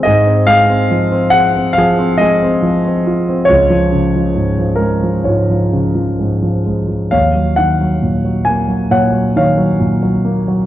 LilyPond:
<<
  \new Staff \with { instrumentName = "Grand piano" } { \time 4/4 \key ees \dorian \tempo 4 = 67 << { ees''8 f''4 ges''8 f''8 ees''4. | des''4. bes'8 des''4. r8 | f''8 ges''4 aes''8 ges''8 f''4. | } \\ { aes'2 aes'8 aes'4. | f'2 f'2 | des''2 des''8 des''4. | } >> }
  \new Staff \with { instrumentName = "Grand piano" } { \clef bass \time 4/4 \key ees \dorian aes,16 c'16 aes16 c'16 f16 c'16 aes'16 c'16 f16 c'16 aes16 c'16 f16 c'16 f'16 c'16 | des,16 f16 des16 f16 aes,16 f16 aes16 f16 aes,16 f16 des16 f16 aes,16 f16 aes16 f16 | ees,16 ges16 ees16 ges16 bes,16 ges16 bes16 ges16 bes,16 ges16 ees16 ges16 bes,16 ges16 bes16 ges16 | }
>>